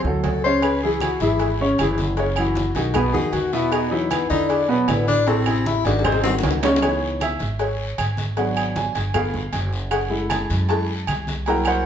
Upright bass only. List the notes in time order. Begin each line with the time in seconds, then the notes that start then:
0.04 D2
0.24 C#2
1.21 G#1
1.79 F#1
2.75 B1
3.15 D#2
3.33 E2
4.30 E2
4.89 A1
5.85 G#1
6.43 C#2
7.40 G#1
7.98 G#1
8.95 G1
9.53 F#1
10.50 F#2
11.08 C2